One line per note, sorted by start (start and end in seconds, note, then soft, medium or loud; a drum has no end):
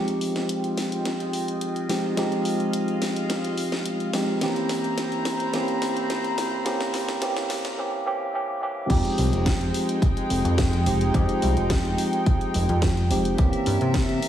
0.00 1.86 F3 medium
0.00 1.86 G#3 medium
0.00 4.38 G#3 medium
0.00 1.86 C4 medium
0.00 1.86 D#4 medium
0.00 4.38 F4 medium
0.00 1.87 G4 medium
0.00 4.38 D#5 medium
0.00 2.16 G5 medium
0.08 closed hi-hat soft
0.21 open hi-hat medium
0.36 snare soft
0.36 closed hi-hat soft
0.49 closed hi-hat medium
0.64 closed hi-hat soft
0.78 snare soft
0.78 open hi-hat loud
0.92 closed hi-hat soft
1.05 snare medium
1.05 closed hi-hat medium
1.20 closed hi-hat soft
1.33 open hi-hat medium
1.48 closed hi-hat soft
1.61 closed hi-hat medium
1.76 closed hi-hat soft
1.89 2.14 F3 medium
1.89 2.14 G#3 medium
1.89 2.14 C4 medium
1.89 2.14 D#4 medium
1.89 2.14 G4 medium
1.89 snare medium
1.89 open hi-hat loud
2.17 4.10 F3 medium
2.17 4.10 G#3 medium
2.17 4.11 C4 medium
2.17 4.11 D#4 medium
2.17 4.11 G4 medium
2.17 4.40 F5 medium
2.17 snare medium
2.17 closed hi-hat medium
2.32 closed hi-hat soft
2.45 open hi-hat loud
2.60 closed hi-hat soft
2.73 closed hi-hat medium
2.88 closed hi-hat soft
3.02 snare medium
3.02 open hi-hat loud
3.16 closed hi-hat soft
3.30 snare medium
3.30 closed hi-hat medium
3.44 closed hi-hat soft
3.57 open hi-hat loud
3.72 snare medium
3.72 closed hi-hat soft
3.85 closed hi-hat medium
4.00 closed hi-hat soft
4.13 4.38 F3 medium
4.13 4.39 G#3 medium
4.13 4.39 C4 medium
4.13 4.39 D#4 medium
4.13 4.39 G4 medium
4.13 snare medium
4.13 open hi-hat loud
4.41 5.52 E3 medium
4.41 5.52 A#3 medium
4.41 5.52 C4 medium
4.41 5.52 C#4 medium
4.41 7.75 E4 medium
4.41 5.53 G4 medium
4.41 7.75 C5 medium
4.41 7.75 A#5 medium
4.41 snare medium
4.41 closed hi-hat medium
4.56 closed hi-hat soft
4.69 snare medium
4.69 open hi-hat loud
4.84 closed hi-hat soft
4.98 snare medium
4.98 closed hi-hat medium
5.12 closed hi-hat soft
5.25 snare medium
5.25 open hi-hat loud
5.40 closed hi-hat soft
5.53 6.64 E3 medium
5.53 6.64 A#3 medium
5.53 6.64 C4 medium
5.53 6.64 C#4 medium
5.53 6.65 G4 medium
5.53 snare medium
5.53 closed hi-hat medium
5.68 closed hi-hat soft
5.82 snare medium
5.82 open hi-hat loud
5.97 closed hi-hat soft
6.10 snare medium
6.10 closed hi-hat medium
6.24 closed hi-hat soft
6.38 snare medium
6.38 open hi-hat loud
6.65 7.19 E3 medium
6.65 7.20 A#3 medium
6.65 7.20 C4 medium
6.65 7.20 C#4 medium
6.65 7.20 G4 loud
6.65 snare medium
6.65 closed hi-hat medium
6.81 snare medium
6.81 closed hi-hat soft
6.94 snare medium
6.94 open hi-hat loud
7.08 snare medium
7.08 closed hi-hat soft
7.21 7.76 E3 medium
7.21 7.76 A#3 medium
7.21 7.76 C4 medium
7.21 7.76 C#4 medium
7.21 7.77 G4 loud
7.21 snare loud
7.21 closed hi-hat medium
7.37 snare medium
7.37 closed hi-hat soft
7.50 snare medium
7.50 open hi-hat loud
7.65 snare medium
7.65 closed hi-hat soft
7.78 8.04 E3 medium
7.78 8.04 A#3 medium
7.78 8.04 C4 medium
7.78 8.04 C#4 medium
7.78 8.05 G4 loud
8.05 8.32 E3 loud
8.05 8.32 A#3 medium
8.05 8.32 C4 medium
8.05 8.32 C#4 medium
8.05 8.33 G4 loud
8.33 8.60 E3 medium
8.33 8.60 A#3 medium
8.33 8.60 C4 medium
8.33 8.60 C#4 medium
8.33 8.61 G4 loud
8.61 8.88 E3 medium
8.61 8.88 A#3 medium
8.61 8.88 C4 medium
8.61 8.88 C#4 medium
8.61 8.89 G4 loud
8.90 9.02 F2 loud
8.90 10.83 F3 medium
8.90 10.83 G#3 medium
8.90 13.35 G#3 medium
8.90 10.83 C4 medium
8.90 13.35 D#4 medium
8.90 10.84 D#4 medium
8.90 10.84 G4 loud
8.90 13.35 G5 medium
8.90 kick loud
8.90 closed hi-hat medium
8.90 crash loud
9.05 closed hi-hat soft
9.18 9.31 C2 loud
9.18 open hi-hat loud
9.33 9.71 F1 medium
9.33 closed hi-hat soft
9.46 kick loud
9.46 snare loud
9.46 closed hi-hat medium
9.61 closed hi-hat soft
9.74 open hi-hat loud
9.89 closed hi-hat soft
10.02 kick loud
10.02 closed hi-hat medium
10.17 closed hi-hat soft
10.30 10.43 F1 medium
10.30 open hi-hat loud
10.45 10.88 F2 loud
10.45 closed hi-hat soft
10.58 kick loud
10.58 snare loud
10.58 closed hi-hat medium
10.73 closed hi-hat soft
10.86 11.10 F1 loud
10.86 11.11 F3 medium
10.86 11.11 G#3 medium
10.86 11.11 C4 medium
10.86 11.12 D#4 medium
10.86 11.12 G4 medium
10.86 open hi-hat loud
11.01 closed hi-hat soft
11.14 11.27 F2 loud
11.14 13.07 F3 medium
11.14 13.08 G#3 medium
11.14 13.08 C4 medium
11.14 13.08 D#4 medium
11.14 13.08 G4 loud
11.14 kick loud
11.14 closed hi-hat medium
11.29 closed hi-hat soft
11.42 11.55 C2 loud
11.42 open hi-hat loud
11.57 11.96 F1 medium
11.57 closed hi-hat soft
11.70 kick loud
11.70 snare loud
11.70 closed hi-hat medium
11.85 closed hi-hat soft
11.98 open hi-hat loud
12.13 closed hi-hat soft
12.26 kick loud
12.26 closed hi-hat medium
12.41 closed hi-hat soft
12.54 12.67 F1 medium
12.54 open hi-hat loud
12.69 13.12 F2 medium
12.69 closed hi-hat soft
12.82 kick loud
12.82 snare loud
12.82 closed hi-hat medium
12.97 closed hi-hat soft
13.10 13.35 F1 loud
13.10 13.35 F3 medium
13.10 13.36 G#3 medium
13.10 13.36 C4 medium
13.10 13.36 D#4 medium
13.10 13.36 G4 medium
13.10 open hi-hat loud
13.25 closed hi-hat soft
13.38 13.51 C2 loud
13.38 14.29 E3 medium
13.38 14.29 A#3 medium
13.38 14.29 C4 medium
13.38 14.29 C#4 medium
13.38 14.29 G4 loud
13.38 14.29 A#4 medium
13.38 14.29 E5 medium
13.38 kick loud
13.38 closed hi-hat medium
13.53 closed hi-hat soft
13.66 13.79 G2 loud
13.66 open hi-hat loud
13.81 14.20 C3 medium
13.81 closed hi-hat soft
13.94 kick loud
13.94 snare loud
13.94 closed hi-hat medium
14.09 closed hi-hat soft
14.23 open hi-hat loud